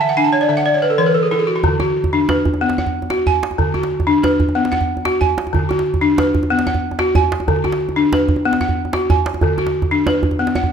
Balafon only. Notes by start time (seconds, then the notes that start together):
0.01 E5
0.09 F#5
0.17 D4 G#5
0.24 A5
0.33 C#5
0.41 D5
0.49 D3 E5
0.57 F#5
0.66 D5
0.74 C#5
0.82 B4
0.90 A4
0.98 E3 C#5
1.06 B4
1.14 A4
1.23 G#4
1.31 E4 A4
1.39 G#4
1.47 F#4
1.56 E4
1.64 D3
1.80 F#4
2.13 D4
2.29 B4
2.61 B3
2.78 F#5
3.10 F#4
3.27 G#5
3.58 D3
3.74 F#4
4.07 D4
4.23 B4
4.55 B3
4.72 F#5
5.05 F#4
5.21 G#5
5.53 D3
5.69 F#4
6.01 D4
6.18 B4
6.50 B3
6.67 F#5
6.99 F#4
7.15 G#5
7.48 D3
7.64 F#4
7.96 D4
8.13 B4
8.45 B3
8.61 F#5
8.94 F#4
9.10 G#5
9.43 D3
9.59 F#4
9.91 D4
10.07 B4
10.39 B3
10.56 F#5